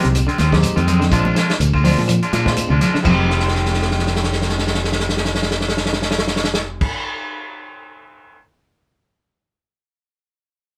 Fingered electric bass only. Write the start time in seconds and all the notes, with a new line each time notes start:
0.05 C2
0.40 D#2
0.77 F2
1.11 A#1
1.60 D2
1.98 A#2
2.33 A#2
2.70 D2
2.95 muted fingered electric bass stroke
3.05 F1